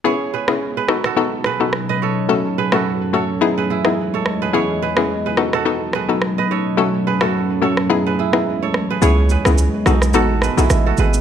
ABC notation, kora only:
X:1
M:4/4
L:1/16
Q:"Swing 16ths" 1/4=107
K:C#m
V:1 name="Kora"
[Gc] z [GB] z2 [GB] z [FA] z2 [GB] z2 [Bd] [Ac] z | z2 [GB] [FA] z2 [Ac] z2 [GB] [EG] z2 [Ac] z [GB] | [Gc] z [GB] z2 [GB] z [FA] z2 [GB] z2 [Bd] [Ac] z | z2 [GB] [FA] z2 [Ac] z2 [GB] [EG] z2 [Ac] z [GB] |
[Gc] z [GB] z3 [DG] z [FA] z [GB] [EG] z [FA] [GB] z |]